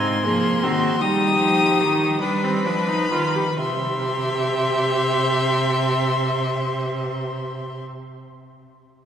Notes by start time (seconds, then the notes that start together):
Already playing: G#2 C4 D#4 C6
0.26 F3 A#3 G#4
0.63 D#3 C4 F#4
1.01 G3 D#4 G4 D#6
1.40 F3
1.81 D#3
2.22 G3 D4 B4 B5
2.44 C4
2.66 F3 D4
2.88 D#4
3.11 D#3 F4
3.35 G4
3.59 C3 G4 E5 C6